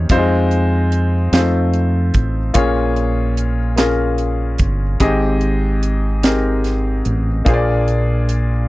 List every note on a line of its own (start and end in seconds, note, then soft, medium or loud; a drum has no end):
0.00 0.11 A#3 medium
0.00 0.12 C#4 medium
0.00 0.10 D#4 medium
0.00 0.11 G4 medium
0.00 0.11 C5 medium
0.00 0.11 C#5 medium
0.09 1.28 F2 medium
0.09 0.16 G3 medium
0.09 1.14 C4 medium
0.09 1.14 D#4 medium
0.09 1.14 F4 medium
0.09 1.14 C5 medium
0.09 kick medium
0.09 closed hi-hat medium
0.17 1.17 G#3 medium
0.51 closed hi-hat soft
0.92 closed hi-hat soft
1.32 2.10 F2 medium
1.32 1.39 G#3 soft
1.32 2.37 C4 medium
1.32 2.37 D#4 medium
1.32 2.37 F4 medium
1.32 2.37 C5 medium
1.32 snare medium
1.32 closed hi-hat medium
1.39 2.40 A3 medium
1.74 closed hi-hat soft
2.14 2.52 A1 medium
2.14 kick medium
2.14 closed hi-hat soft
2.54 4.56 A#1 medium
2.54 3.74 A#2 medium
2.54 3.59 A#3 medium
2.54 3.59 C#4 medium
2.54 3.59 F4 medium
2.54 3.59 G#4 medium
2.54 3.59 C#5 medium
2.54 kick medium
2.54 closed hi-hat medium
2.96 closed hi-hat soft
3.37 closed hi-hat soft
3.76 4.81 A#3 medium
3.76 4.82 C#4 medium
3.76 4.82 F4 medium
3.76 4.82 G#4 medium
3.76 4.82 A#4 medium
3.76 snare medium
3.76 closed hi-hat medium
4.18 closed hi-hat soft
4.58 4.97 G1 medium
4.58 kick medium
4.58 closed hi-hat soft
5.00 7.01 G#1 medium
5.00 6.19 G#2 medium
5.00 6.04 C4 medium
5.00 6.05 D#4 medium
5.00 6.05 G4 medium
5.00 6.05 G#4 medium
5.00 6.05 D#5 medium
5.00 kick medium
5.00 closed hi-hat medium
5.41 closed hi-hat soft
5.83 closed hi-hat soft
6.23 7.28 C4 medium
6.23 7.28 D#4 medium
6.23 7.28 G4 medium
6.23 7.28 G#4 medium
6.23 7.28 A#4 medium
6.23 snare medium
6.23 closed hi-hat medium
6.64 snare soft
6.64 closed hi-hat soft
7.05 7.43 A1 medium
7.05 closed hi-hat soft
7.45 8.65 A#1 medium
7.45 8.65 A#2 medium
7.45 8.50 A#3 medium
7.45 8.50 D4 medium
7.45 8.50 F4 medium
7.45 8.50 G#4 medium
7.45 7.53 C5 medium
7.45 kick medium
7.45 closed hi-hat medium
7.54 8.54 D5 medium
7.88 closed hi-hat soft
8.29 closed hi-hat soft